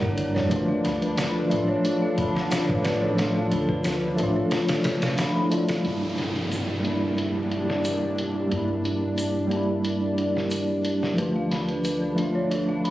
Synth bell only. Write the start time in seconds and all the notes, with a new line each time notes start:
Already playing: F#4 C#5 D5 E5 F#5 A#5
0.00 A#4
0.17 A#4
0.35 C#5
0.51 B4
0.68 F5
0.84 B5
1.02 B4
1.17 B4
1.35 B4
1.51 E5
1.68 C#5
1.84 F4
2.02 F5
2.17 B5
2.36 D5
2.51 F5
2.69 B4
2.84 B4
3.02 C#5
3.17 B4
3.35 F5
3.51 B5
3.69 B4
3.85 B4
4.02 B4
4.18 E5
4.36 C#5
4.52 F4
4.69 F5
4.85 A4
5.03 F5
5.19 B5
5.36 B5
5.52 D5
5.70 A4
11.18 B4
11.36 F5
11.51 B5
11.69 B4
11.84 B4
12.02 B4
12.17 E5
12.35 C#5
12.51 F4
12.69 F5
12.84 B5